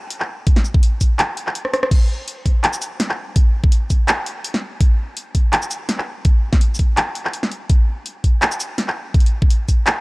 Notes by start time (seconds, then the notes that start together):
0.10 closed hi-hat
0.20 clap
0.47 kick, closed hi-hat
0.56 snare
0.65 shaker
0.74 kick
0.83 closed hi-hat
1.01 kick, closed hi-hat, shaker
1.19 clap, closed hi-hat
1.37 closed hi-hat
1.47 clap
1.55 closed hi-hat
1.65 cross-stick
1.73 cross-stick, closed hi-hat
1.83 cross-stick
1.91 kick, closed hi-hat, crash
2.28 closed hi-hat
2.46 kick, closed hi-hat
2.64 clap, closed hi-hat
2.73 shaker
2.82 closed hi-hat, shaker
3.00 snare, closed hi-hat
3.09 clap
3.36 kick, closed hi-hat
3.64 kick
3.72 closed hi-hat
3.90 kick, closed hi-hat, shaker
4.08 clap, closed hi-hat
4.26 closed hi-hat
4.45 closed hi-hat
4.54 snare
4.81 kick, closed hi-hat
5.17 closed hi-hat
5.35 kick, closed hi-hat
5.53 clap, closed hi-hat
5.62 shaker
5.71 closed hi-hat, shaker
5.89 snare, closed hi-hat
5.98 clap
6.25 kick, closed hi-hat
6.53 kick, snare
6.61 closed hi-hat
6.75 shaker
6.79 kick, closed hi-hat
6.97 clap, closed hi-hat
7.15 closed hi-hat
7.25 clap
7.33 closed hi-hat
7.43 snare
7.51 closed hi-hat
7.70 kick, closed hi-hat
8.06 closed hi-hat
8.24 kick, closed hi-hat
8.42 clap, closed hi-hat
8.52 shaker
8.60 closed hi-hat, shaker
8.78 snare, closed hi-hat
8.88 clap
9.14 kick, closed hi-hat
9.20 closed hi-hat
9.26 closed hi-hat
9.42 kick
9.50 closed hi-hat
9.69 kick, closed hi-hat, shaker
9.87 clap, closed hi-hat